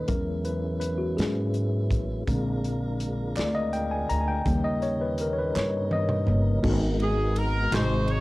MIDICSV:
0, 0, Header, 1, 6, 480
1, 0, Start_track
1, 0, Key_signature, 5, "minor"
1, 0, Tempo, 726392
1, 64, Time_signature, 6, 3, 24, 8
1, 5421, End_track
2, 0, Start_track
2, 0, Title_t, "Horn section"
2, 0, Program_c, 0, 61
2, 4638, Note_on_c, 0, 68, 80
2, 4855, Note_off_c, 0, 68, 0
2, 4874, Note_on_c, 0, 70, 95
2, 5109, Note_off_c, 0, 70, 0
2, 5116, Note_on_c, 0, 63, 78
2, 5116, Note_on_c, 0, 66, 80
2, 5116, Note_on_c, 0, 72, 100
2, 5349, Note_off_c, 0, 72, 0
2, 5353, Note_on_c, 0, 73, 105
2, 5421, Note_off_c, 0, 63, 0
2, 5421, Note_off_c, 0, 66, 0
2, 5421, Note_off_c, 0, 73, 0
2, 5421, End_track
3, 0, Start_track
3, 0, Title_t, "Tine electric piano"
3, 0, Program_c, 1, 4
3, 0, Control_c, 1, 64, 127
3, 0, Note_on_c, 1, 51, 49
3, 0, Note_on_c, 1, 57, 44
3, 0, Note_on_c, 1, 61, 56
3, 0, Note_on_c, 1, 71, 82
3, 0, Note_on_c, 1, 75, 84
3, 53, Note_on_c, 1, 70, 79
3, 58, Note_on_c, 1, 54, 51
3, 59, Note_on_c, 1, 56, 42
3, 63, Note_off_c, 1, 61, 0
3, 63, Note_on_c, 1, 61, 50
3, 72, Control_c, 1, 64, 0
3, 76, Note_off_c, 1, 51, 0
3, 76, Note_off_c, 1, 71, 0
3, 77, Note_off_c, 1, 57, 0
3, 78, Note_off_c, 1, 75, 0
3, 200, Control_c, 1, 64, 127
3, 296, Note_on_c, 1, 71, 85
3, 307, Note_off_c, 1, 70, 0
3, 381, Note_off_c, 1, 54, 0
3, 382, Note_off_c, 1, 56, 0
3, 384, Note_off_c, 1, 61, 0
3, 521, Note_off_c, 1, 71, 0
3, 529, Note_on_c, 1, 71, 80
3, 647, Note_on_c, 1, 66, 71
3, 662, Note_off_c, 1, 71, 0
3, 773, Note_on_c, 1, 68, 73
3, 780, Note_on_c, 1, 54, 46
3, 781, Note_off_c, 1, 66, 0
3, 782, Note_on_c, 1, 56, 41
3, 785, Note_on_c, 1, 61, 51
3, 1000, Note_off_c, 1, 54, 0
3, 1001, Note_off_c, 1, 56, 0
3, 1002, Note_off_c, 1, 61, 0
3, 1504, Note_on_c, 1, 50, 52
3, 1511, Note_on_c, 1, 56, 48
3, 1517, Control_c, 1, 64, 0
3, 1517, Note_on_c, 1, 60, 58
3, 1630, Control_c, 1, 64, 127
3, 1826, Note_off_c, 1, 50, 0
3, 1829, Note_off_c, 1, 56, 0
3, 1833, Note_off_c, 1, 60, 0
3, 1956, Note_off_c, 1, 68, 0
3, 2226, Note_on_c, 1, 74, 91
3, 2339, Note_off_c, 1, 74, 0
3, 2344, Note_on_c, 1, 75, 94
3, 2465, Note_on_c, 1, 79, 91
3, 2471, Note_off_c, 1, 75, 0
3, 2585, Note_on_c, 1, 80, 92
3, 2591, Note_off_c, 1, 79, 0
3, 2640, Note_off_c, 1, 80, 0
3, 2705, Note_on_c, 1, 82, 97
3, 2781, Note_on_c, 1, 80, 67
3, 2784, Note_off_c, 1, 82, 0
3, 2827, Note_on_c, 1, 79, 92
3, 2829, Note_off_c, 1, 80, 0
3, 2945, Note_on_c, 1, 55, 50
3, 2946, Note_on_c, 1, 49, 53
3, 2954, Note_on_c, 1, 58, 59
3, 2959, Control_c, 1, 64, 0
3, 3066, Control_c, 1, 64, 127
3, 3068, Note_on_c, 1, 75, 94
3, 3075, Note_off_c, 1, 79, 0
3, 3189, Note_on_c, 1, 73, 89
3, 3192, Note_off_c, 1, 75, 0
3, 3266, Note_off_c, 1, 49, 0
3, 3266, Note_off_c, 1, 55, 0
3, 3271, Note_off_c, 1, 58, 0
3, 3313, Note_off_c, 1, 73, 0
3, 3313, Note_on_c, 1, 71, 82
3, 3366, Note_off_c, 1, 71, 0
3, 3446, Note_on_c, 1, 70, 85
3, 3523, Note_on_c, 1, 73, 63
3, 3530, Note_off_c, 1, 70, 0
3, 3551, Note_off_c, 1, 73, 0
3, 3559, Note_on_c, 1, 71, 80
3, 3677, Note_off_c, 1, 71, 0
3, 3680, Note_on_c, 1, 73, 88
3, 3897, Note_off_c, 1, 73, 0
3, 3917, Note_on_c, 1, 75, 79
3, 4138, Note_on_c, 1, 49, 47
3, 4144, Note_on_c, 1, 55, 48
3, 4146, Note_on_c, 1, 58, 54
3, 4358, Note_off_c, 1, 49, 0
3, 4361, Note_off_c, 1, 55, 0
3, 4362, Note_off_c, 1, 58, 0
3, 4365, Note_off_c, 1, 75, 0
3, 4379, Note_on_c, 1, 56, 66
3, 4382, Note_on_c, 1, 44, 67
3, 4382, Note_on_c, 1, 59, 59
3, 4382, Note_on_c, 1, 63, 62
3, 4383, Note_on_c, 1, 66, 60
3, 4385, Note_on_c, 1, 69, 56
3, 4396, Control_c, 1, 64, 0
3, 4425, Note_on_c, 1, 70, 73
3, 4429, Note_off_c, 1, 69, 0
3, 4514, Control_c, 1, 64, 127
3, 5076, Note_off_c, 1, 44, 0
3, 5092, Note_off_c, 1, 56, 0
3, 5096, Note_off_c, 1, 63, 0
3, 5098, Note_off_c, 1, 66, 0
3, 5100, Note_on_c, 1, 56, 70
3, 5101, Note_on_c, 1, 48, 62
3, 5102, Note_off_c, 1, 59, 0
3, 5104, Note_on_c, 1, 63, 63
3, 5106, Note_on_c, 1, 66, 61
3, 5107, Note_on_c, 1, 44, 68
3, 5111, Control_c, 1, 64, 0
3, 5113, Note_on_c, 1, 84, 77
3, 5123, Note_off_c, 1, 70, 0
3, 5226, Control_c, 1, 64, 127
3, 5421, Note_off_c, 1, 44, 0
3, 5421, Note_off_c, 1, 48, 0
3, 5421, Note_off_c, 1, 56, 0
3, 5421, Note_off_c, 1, 63, 0
3, 5421, Note_off_c, 1, 66, 0
3, 5421, Note_off_c, 1, 84, 0
3, 5421, End_track
4, 0, Start_track
4, 0, Title_t, "Tonewheel organ"
4, 0, Program_c, 2, 16
4, 52, Note_on_c, 2, 59, 64
4, 53, Note_on_c, 2, 56, 58
4, 56, Note_on_c, 2, 61, 53
4, 57, Note_on_c, 2, 64, 54
4, 1476, Note_off_c, 2, 59, 0
4, 1477, Note_off_c, 2, 56, 0
4, 1478, Note_off_c, 2, 61, 0
4, 1478, Note_off_c, 2, 64, 0
4, 1503, Note_on_c, 2, 56, 77
4, 1503, Note_on_c, 2, 62, 70
4, 1507, Note_on_c, 2, 65, 66
4, 1507, Note_on_c, 2, 70, 80
4, 2920, Note_off_c, 2, 56, 0
4, 2920, Note_off_c, 2, 62, 0
4, 2923, Note_off_c, 2, 65, 0
4, 2923, Note_off_c, 2, 70, 0
4, 2945, Note_on_c, 2, 61, 60
4, 2952, Note_on_c, 2, 69, 55
4, 2953, Note_on_c, 2, 55, 67
4, 2953, Note_on_c, 2, 63, 60
4, 2990, Note_on_c, 2, 70, 69
4, 2994, Note_off_c, 2, 69, 0
4, 4358, Note_off_c, 2, 61, 0
4, 4362, Note_off_c, 2, 55, 0
4, 4362, Note_off_c, 2, 63, 0
4, 4381, Note_off_c, 2, 70, 0
4, 4381, Note_on_c, 2, 66, 63
4, 4382, Note_on_c, 2, 56, 65
4, 4386, Note_on_c, 2, 59, 63
4, 4389, Note_on_c, 2, 63, 61
4, 4390, Note_on_c, 2, 70, 76
4, 5088, Note_off_c, 2, 56, 0
4, 5091, Note_on_c, 2, 54, 66
4, 5092, Note_off_c, 2, 63, 0
4, 5095, Note_on_c, 2, 56, 59
4, 5097, Note_on_c, 2, 68, 70
4, 5099, Note_on_c, 2, 58, 49
4, 5100, Note_on_c, 2, 63, 62
4, 5101, Note_off_c, 2, 66, 0
4, 5104, Note_off_c, 2, 59, 0
4, 5106, Note_off_c, 2, 70, 0
4, 5141, Note_on_c, 2, 48, 63
4, 5144, Note_off_c, 2, 58, 0
4, 5421, Note_off_c, 2, 48, 0
4, 5421, Note_off_c, 2, 54, 0
4, 5421, Note_off_c, 2, 56, 0
4, 5421, Note_off_c, 2, 63, 0
4, 5421, Note_off_c, 2, 68, 0
4, 5421, End_track
5, 0, Start_track
5, 0, Title_t, "Upright bass"
5, 0, Program_c, 3, 32
5, 57, Note_on_c, 3, 40, 88
5, 757, Note_off_c, 3, 40, 0
5, 782, Note_on_c, 3, 44, 78
5, 1258, Note_on_c, 3, 33, 80
5, 1268, Note_off_c, 3, 44, 0
5, 1484, Note_off_c, 3, 33, 0
5, 1502, Note_on_c, 3, 34, 94
5, 2200, Note_off_c, 3, 34, 0
5, 2232, Note_on_c, 3, 38, 86
5, 2684, Note_off_c, 3, 38, 0
5, 2711, Note_on_c, 3, 38, 80
5, 2931, Note_off_c, 3, 38, 0
5, 2947, Note_on_c, 3, 39, 96
5, 3641, Note_off_c, 3, 39, 0
5, 3671, Note_on_c, 3, 43, 86
5, 4122, Note_off_c, 3, 43, 0
5, 4149, Note_on_c, 3, 31, 95
5, 4369, Note_off_c, 3, 31, 0
5, 4386, Note_on_c, 3, 32, 100
5, 5077, Note_off_c, 3, 32, 0
5, 5102, Note_on_c, 3, 32, 96
5, 5421, Note_off_c, 3, 32, 0
5, 5421, End_track
6, 0, Start_track
6, 0, Title_t, "Drums"
6, 52, Note_on_c, 9, 42, 73
6, 57, Note_on_c, 9, 36, 101
6, 118, Note_off_c, 9, 42, 0
6, 123, Note_off_c, 9, 36, 0
6, 296, Note_on_c, 9, 42, 50
6, 362, Note_off_c, 9, 42, 0
6, 536, Note_on_c, 9, 42, 72
6, 602, Note_off_c, 9, 42, 0
6, 782, Note_on_c, 9, 42, 69
6, 794, Note_on_c, 9, 38, 98
6, 848, Note_off_c, 9, 42, 0
6, 860, Note_off_c, 9, 38, 0
6, 1017, Note_on_c, 9, 42, 50
6, 1083, Note_off_c, 9, 42, 0
6, 1259, Note_on_c, 9, 36, 88
6, 1262, Note_on_c, 9, 42, 67
6, 1325, Note_off_c, 9, 36, 0
6, 1328, Note_off_c, 9, 42, 0
6, 1503, Note_on_c, 9, 36, 105
6, 1503, Note_on_c, 9, 42, 82
6, 1569, Note_off_c, 9, 36, 0
6, 1569, Note_off_c, 9, 42, 0
6, 1747, Note_on_c, 9, 42, 49
6, 1813, Note_off_c, 9, 42, 0
6, 1983, Note_on_c, 9, 42, 76
6, 2049, Note_off_c, 9, 42, 0
6, 2223, Note_on_c, 9, 39, 83
6, 2230, Note_on_c, 9, 42, 75
6, 2242, Note_on_c, 9, 38, 97
6, 2289, Note_off_c, 9, 39, 0
6, 2296, Note_off_c, 9, 42, 0
6, 2308, Note_off_c, 9, 38, 0
6, 2465, Note_on_c, 9, 42, 52
6, 2531, Note_off_c, 9, 42, 0
6, 2708, Note_on_c, 9, 42, 69
6, 2774, Note_off_c, 9, 42, 0
6, 2945, Note_on_c, 9, 42, 80
6, 2946, Note_on_c, 9, 36, 109
6, 3011, Note_off_c, 9, 42, 0
6, 3012, Note_off_c, 9, 36, 0
6, 3186, Note_on_c, 9, 42, 50
6, 3252, Note_off_c, 9, 42, 0
6, 3423, Note_on_c, 9, 42, 80
6, 3489, Note_off_c, 9, 42, 0
6, 3674, Note_on_c, 9, 39, 88
6, 3679, Note_on_c, 9, 38, 58
6, 3740, Note_off_c, 9, 39, 0
6, 3745, Note_off_c, 9, 38, 0
6, 3906, Note_on_c, 9, 48, 73
6, 3972, Note_off_c, 9, 48, 0
6, 4024, Note_on_c, 9, 47, 70
6, 4090, Note_off_c, 9, 47, 0
6, 4142, Note_on_c, 9, 45, 97
6, 4208, Note_off_c, 9, 45, 0
6, 4386, Note_on_c, 9, 49, 104
6, 4387, Note_on_c, 9, 36, 121
6, 4452, Note_off_c, 9, 49, 0
6, 4453, Note_off_c, 9, 36, 0
6, 4624, Note_on_c, 9, 51, 49
6, 4690, Note_off_c, 9, 51, 0
6, 4863, Note_on_c, 9, 51, 71
6, 4929, Note_off_c, 9, 51, 0
6, 5105, Note_on_c, 9, 51, 67
6, 5108, Note_on_c, 9, 39, 92
6, 5116, Note_on_c, 9, 38, 111
6, 5171, Note_off_c, 9, 51, 0
6, 5175, Note_off_c, 9, 39, 0
6, 5182, Note_off_c, 9, 38, 0
6, 5337, Note_on_c, 9, 51, 50
6, 5403, Note_off_c, 9, 51, 0
6, 5421, End_track
0, 0, End_of_file